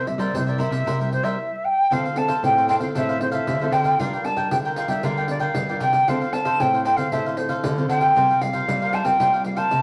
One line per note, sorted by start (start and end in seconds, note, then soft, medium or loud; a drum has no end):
0.00 0.15 C3 medium
0.00 0.31 C3 medium
0.06 0.29 G3 medium
0.06 0.29 A#3 soft
0.06 0.29 E4 medium
0.06 0.21 E5 medium
0.06 muted cavaquinho stroke soft
0.06 pandeiro soft
0.18 0.30 G3 medium
0.18 0.46 A#4 medium
0.18 0.45 C5 medium
0.18 0.36 D5 medium
0.18 0.45 E5 medium
0.18 pandeiro medium
0.33 0.84 G2 medium
0.33 0.67 C3 medium
0.33 0.49 G3 medium
0.33 0.49 A#3 medium
0.33 0.50 E4 medium
0.33 0.50 C5 medium
0.33 pandeiro medium
0.47 0.57 A#4 soft
0.47 0.58 C5 soft
0.47 0.59 D5 medium
0.47 0.58 E5 medium
0.47 pandeiro soft
0.58 0.95 G3 medium
0.58 0.95 A#3 medium
0.58 0.71 E4 medium
0.58 0.95 E4 medium
0.58 0.71 A#4 medium
0.58 0.70 C5 medium
0.58 0.69 E5 medium
0.58 1.09 E5 medium
0.58 pandeiro medium
0.70 0.83 C3 medium
0.70 0.85 A#4 soft
0.70 0.84 C5 soft
0.70 0.84 E5 soft
0.70 pandeiro medium
0.86 1.36 C3 medium
0.86 1.20 C3 medium
0.86 0.98 E4 medium
0.86 0.98 A#4 medium
0.86 0.99 C5 medium
0.86 0.99 E5 medium
0.86 pandeiro medium
1.00 1.48 G3 medium
1.00 1.48 A#3 medium
1.00 1.48 E4 medium
1.00 1.10 A#4 soft
1.00 1.11 C5 soft
1.00 1.11 E5 soft
1.00 pandeiro soft
1.11 1.25 C5 medium
1.11 muted cavaquinho stroke soft
1.11 pandeiro soft
1.23 1.35 G3 medium
1.23 1.37 A#4 medium
1.23 1.37 C5 medium
1.23 1.36 E5 medium
1.23 1.66 E5 medium
1.23 pandeiro medium
1.64 1.94 G5 medium
1.90 2.35 D3 medium
1.90 2.41 D3 medium
1.90 2.06 C4 medium
1.90 2.03 D4 medium
1.90 2.07 F4 medium
1.90 2.03 A4 medium
1.90 2.07 A4 medium
1.90 2.03 C5 medium
1.90 2.03 F5 medium
1.90 2.19 F5 loud
1.90 pandeiro medium
2.04 2.15 A4 soft
2.04 2.15 C5 soft
2.04 2.15 F5 soft
2.04 pandeiro soft
2.16 2.32 C4 medium
2.16 2.32 F4 soft
2.16 2.32 A4 medium
2.16 2.43 A5 loud
2.16 muted cavaquinho stroke soft
2.16 pandeiro medium
2.28 2.55 A4 soft
2.28 2.54 C5 medium
2.28 2.54 F5 medium
2.28 pandeiro medium
2.43 2.76 A2 medium
2.43 2.93 A2 medium
2.43 2.67 C4 soft
2.43 2.68 F4 medium
2.43 2.68 A4 medium
2.43 2.68 G5 loud
2.43 pandeiro medium
2.57 2.67 A4 soft
2.57 2.68 C5 soft
2.57 2.68 F5 medium
2.57 pandeiro soft
2.68 2.81 D4 medium
2.68 2.80 A4 medium
2.68 2.79 C5 medium
2.68 2.78 F5 medium
2.68 2.75 G5 medium
2.68 pandeiro medium
2.80 2.92 D3 medium
2.80 2.90 C4 medium
2.80 2.90 F4 medium
2.80 2.90 A4 medium
2.80 2.94 A4 soft
2.80 2.93 C5 soft
2.80 2.93 F5 soft
2.80 2.88 F5 medium
2.80 pandeiro medium
2.95 3.40 A2 medium
2.95 3.45 D3 medium
2.95 3.17 C4 medium
2.95 3.07 D4 medium
2.95 3.18 F4 medium
2.95 3.07 A4 medium
2.95 3.18 A4 medium
2.95 3.07 C5 medium
2.95 3.20 E5 medium
2.95 3.08 F5 medium
2.95 pandeiro medium
3.09 3.19 A4 soft
3.09 3.20 C5 soft
3.09 3.20 F5 medium
3.09 pandeiro soft
3.20 3.56 C4 medium
3.20 3.56 F4 soft
3.20 3.56 A4 medium
3.20 3.32 C5 medium
3.20 muted cavaquinho stroke soft
3.20 pandeiro medium
3.32 3.59 A4 medium
3.32 3.58 C5 medium
3.32 3.74 E5 medium
3.32 3.58 F5 medium
3.32 pandeiro medium
3.47 3.97 A2 medium
3.47 3.69 D3 medium
3.47 pandeiro medium
3.61 3.98 C4 medium
3.61 3.98 F4 medium
3.61 3.98 A4 medium
3.61 3.71 A4 soft
3.61 3.72 C5 soft
3.61 3.73 F5 soft
3.61 pandeiro soft
3.72 3.95 D3 medium
3.72 3.85 D4 medium
3.72 3.85 A4 medium
3.72 3.85 C5 medium
3.72 3.84 F5 medium
3.72 4.01 G5 medium
3.72 pandeiro medium
3.84 3.99 A4 soft
3.84 3.98 C5 soft
3.84 3.98 F5 soft
3.84 pandeiro medium
3.99 4.44 G2 medium
3.99 4.49 G3 medium
3.99 4.15 D4 medium
3.99 4.12 F4 medium
3.99 4.15 F4 medium
3.99 4.12 A#4 medium
3.99 4.16 A#4 medium
3.99 4.12 D5 medium
3.99 4.26 F5 medium
3.99 4.12 G5 medium
3.99 pandeiro medium
4.13 4.24 A#4 soft
4.13 4.24 D5 soft
4.13 4.24 G5 soft
4.13 pandeiro soft
4.24 4.47 D4 soft
4.24 4.47 F4 medium
4.24 4.47 A#4 medium
4.24 4.50 A5 medium
4.24 muted cavaquinho stroke soft
4.24 pandeiro medium
4.36 4.63 A#4 soft
4.36 4.63 D5 medium
4.36 4.63 G5 medium
4.36 pandeiro medium
4.51 4.85 D3 medium
4.51 5.01 D3 medium
4.51 4.76 D4 medium
4.51 4.76 F4 medium
4.51 4.77 A#4 medium
4.51 4.57 G5 medium
4.51 pandeiro medium
4.65 4.76 A#4 soft
4.65 4.77 D5 soft
4.65 4.77 G5 medium
4.65 pandeiro soft
4.76 4.89 F4 medium
4.76 4.89 A#4 medium
4.76 4.89 D5 medium
4.76 4.91 F5 medium
4.76 4.88 G5 medium
4.76 pandeiro medium
4.88 5.00 G3 medium
4.88 4.99 D4 medium
4.88 4.99 F4 medium
4.88 4.99 A#4 medium
4.88 5.03 A#4 soft
4.88 5.02 D5 soft
4.88 5.06 E5 medium
4.88 5.02 G5 soft
4.88 pandeiro medium
5.03 5.48 D3 medium
5.03 5.53 G3 medium
5.03 5.26 D4 medium
5.03 5.16 F4 medium
5.03 5.26 F4 medium
5.03 5.16 A#4 medium
5.03 5.26 A#4 medium
5.03 5.16 D5 medium
5.03 5.29 F5 loud
5.03 5.16 G5 medium
5.03 pandeiro medium
5.17 5.28 A#4 soft
5.17 5.28 D5 soft
5.17 5.29 G5 medium
5.17 pandeiro soft
5.28 5.54 D4 medium
5.28 5.54 F4 medium
5.28 5.54 A#4 medium
5.28 5.41 D5 medium
5.28 muted cavaquinho stroke soft
5.28 pandeiro medium
5.40 5.67 A#4 medium
5.40 5.67 D5 medium
5.40 5.78 F5 medium
5.40 5.66 G5 medium
5.40 pandeiro medium
5.55 5.78 G2 loud
5.55 6.05 D3 medium
5.55 pandeiro medium
5.69 6.06 D4 medium
5.69 6.06 F4 medium
5.69 5.79 A#4 soft
5.69 6.07 A#4 medium
5.69 5.79 D5 soft
5.69 5.80 G5 medium
5.69 pandeiro soft
5.80 6.03 C3 medium
5.80 5.93 F4 medium
5.80 5.93 A#4 medium
5.80 5.92 D5 medium
5.80 5.91 G5 medium
5.80 6.10 G5 medium
5.80 pandeiro medium
5.92 6.06 A#4 soft
5.92 6.06 D5 soft
5.92 6.05 G5 soft
5.92 pandeiro medium
6.07 6.52 D3 loud
6.07 6.58 D3 medium
6.07 6.23 C4 medium
6.07 6.20 D4 medium
6.07 6.24 F4 medium
6.07 6.20 A4 medium
6.07 6.24 A4 medium
6.07 6.20 C5 medium
6.07 6.34 F5 medium
6.07 6.20 F5 medium
6.07 pandeiro medium
6.21 6.32 A4 soft
6.21 6.33 C5 soft
6.21 6.33 F5 soft
6.21 pandeiro soft
6.33 6.55 C4 medium
6.33 6.55 F4 medium
6.33 6.55 A4 medium
6.33 6.62 A5 medium
6.33 muted cavaquinho stroke soft
6.33 pandeiro medium
6.45 6.72 A4 medium
6.45 6.71 C5 medium
6.45 6.71 F5 medium
6.45 pandeiro medium
6.60 7.09 A2 medium
6.60 6.93 A2 loud
6.60 6.85 C4 medium
6.60 6.85 F4 medium
6.60 6.85 A4 medium
6.60 6.84 G5 medium
6.60 pandeiro medium
6.74 6.84 A4 soft
6.74 6.85 C5 soft
6.74 6.85 F5 medium
6.74 pandeiro soft
6.85 6.97 D4 medium
6.85 6.98 A4 medium
6.85 6.97 C5 medium
6.85 6.96 F5 medium
6.85 6.98 G5 medium
6.85 pandeiro medium
6.96 7.09 D3 medium
6.96 7.07 C4 medium
6.96 7.07 F4 medium
6.96 7.07 A4 medium
6.96 7.11 A4 soft
6.96 7.10 C5 soft
6.96 7.13 F5 medium
6.96 7.10 F5 medium
6.96 pandeiro medium
7.12 7.56 A2 medium
7.12 7.61 D3 medium
7.12 7.34 C4 medium
7.12 7.24 D4 medium
7.12 7.34 F4 soft
7.12 7.24 A4 medium
7.12 7.34 A4 medium
7.12 7.24 C5 medium
7.12 7.38 E5 medium
7.12 7.25 F5 medium
7.12 pandeiro medium
7.26 7.37 A4 soft
7.26 7.37 C5 soft
7.26 7.37 F5 medium
7.26 pandeiro soft
7.37 7.62 C4 medium
7.37 7.62 F4 medium
7.37 7.62 A4 medium
7.37 7.50 C5 medium
7.37 muted cavaquinho stroke soft
7.37 pandeiro medium
7.49 7.76 A4 medium
7.49 7.75 C5 medium
7.49 7.75 F5 medium
7.49 pandeiro medium
7.64 8.13 A2 medium
7.64 7.86 D3 loud
7.64 pandeiro medium
7.77 8.14 C4 medium
7.77 8.14 F4 medium
7.77 8.15 A4 medium
7.77 7.89 A4 soft
7.77 7.89 C5 soft
7.77 7.89 F5 soft
7.77 pandeiro soft
7.89 8.11 D3 medium
7.89 8.02 D4 medium
7.89 8.01 A4 medium
7.89 8.01 C5 medium
7.89 8.00 F5 medium
7.89 8.43 G5 loud
7.89 pandeiro medium
8.01 8.15 A4 soft
8.01 8.14 C5 soft
8.01 8.14 F5 soft
8.01 pandeiro medium
8.16 8.60 C3 medium
8.16 8.65 C3 medium
8.16 8.31 G3 medium
8.16 8.32 A#3 medium
8.16 8.28 F4 medium
8.16 8.32 F4 medium
8.16 8.28 A#4 medium
8.16 8.29 C5 medium
8.16 8.29 F5 medium
8.16 pandeiro medium
8.30 8.40 A#4 soft
8.30 8.41 C5 soft
8.30 8.41 F5 soft
8.30 pandeiro soft
8.41 8.63 G3 soft
8.41 8.64 A#3 medium
8.41 8.64 F4 medium
8.41 8.95 F5 loud
8.41 muted cavaquinho stroke soft
8.41 pandeiro medium
8.53 8.80 A#4 soft
8.53 8.79 C5 medium
8.53 8.79 F5 medium
8.53 pandeiro medium
8.68 9.17 G2 medium
8.68 9.01 G3 medium
8.68 8.92 G3 medium
8.68 8.93 A#3 medium
8.68 8.93 F4 medium
8.68 pandeiro medium
8.82 8.93 A#4 soft
8.82 8.93 C5 soft
8.82 8.93 F5 medium
8.82 pandeiro soft
8.93 9.05 F4 medium
8.93 9.05 A#4 medium
8.93 9.04 C5 medium
8.93 9.03 F5 medium
8.93 9.06 A5 medium
8.93 pandeiro medium
9.04 9.15 G3 medium
9.04 9.15 A#3 medium
9.04 9.16 C4 medium
9.04 9.15 F4 medium
9.04 9.18 A#4 soft
9.04 9.18 C5 soft
9.04 9.18 F5 soft
9.04 9.45 G5 loud
9.04 pandeiro medium
9.20 9.70 C3 medium
9.20 9.64 G3 medium
9.20 9.36 G3 soft
9.20 9.36 A#3 soft
9.20 9.32 F4 medium
9.20 9.36 F4 medium
9.20 9.32 A#4 medium
9.20 9.32 C5 medium
9.20 9.32 F5 medium
9.20 pandeiro medium
9.33 9.44 A#4 soft
9.33 9.43 C5 soft
9.33 9.44 F5 soft
9.33 pandeiro soft
9.44 9.80 G3 medium
9.44 9.80 A#3 medium
9.44 9.80 F4 medium
9.44 9.58 F5 medium
9.44 muted cavaquinho stroke soft
9.44 pandeiro medium
9.56 9.82 A#4 medium
9.56 9.82 C5 medium
9.56 9.82 F5 medium
9.56 9.82 A5 loud
9.56 pandeiro soft
9.71 9.82 G2 medium
9.71 9.82 C3 medium
9.71 pandeiro medium